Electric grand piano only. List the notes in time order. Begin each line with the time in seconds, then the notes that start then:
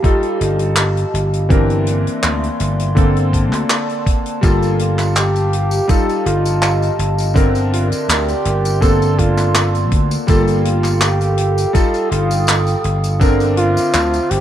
0.02 G3 D#4 F4 A4
1.49 E3 C4 D4 A#4
2.95 D3 A#3 C4 A4
4.41 G3 A#3 F4 A4
5.88 G3 D#4 F4 A4
7.34 D3 C4 D4 A#4
8.80 D3 A#3 C4 A4
10.27 G3 A#3 F4 A4
11.73 G3 D#4 F4 A4
13.19 D3 C4 D4 A#4